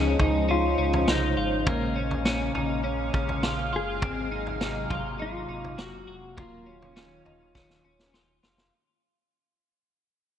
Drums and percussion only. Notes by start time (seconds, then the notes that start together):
0.19 kick, floor tom
0.93 floor tom
1.08 snare
1.67 kick, floor tom
2.11 floor tom
2.25 snare
2.55 floor tom
3.14 kick
3.29 floor tom
3.43 snare
4.02 kick, floor tom
4.47 floor tom
4.61 snare
4.90 kick, floor tom
5.64 floor tom
5.79 snare
6.38 kick, floor tom
6.82 floor tom
6.97 snare
7.26 floor tom
7.55 kick, snare
7.70 snare
7.99 snare
8.14 snare
8.43 snare
8.58 snare